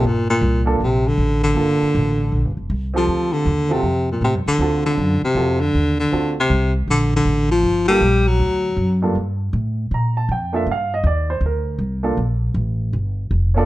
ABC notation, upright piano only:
X:1
M:4/4
L:1/8
Q:"Swing" 1/4=158
K:Gm
V:1 name="Upright piano"
z3 [B,DFA] z4 | [B,DFA]3 z4 [CFGA]- | [CFGA]2 z [C^E^FA] z4 | [C^E^FA]3 z [CEFA] z3 |
[C^E^FA] z6 z | z [B,DFA] z4 z [G,,B,DFA] | z4 b a g [B,DFA=e] | f e d c B3 [B,DFA] |
z6 z [B,DFA^cd] |]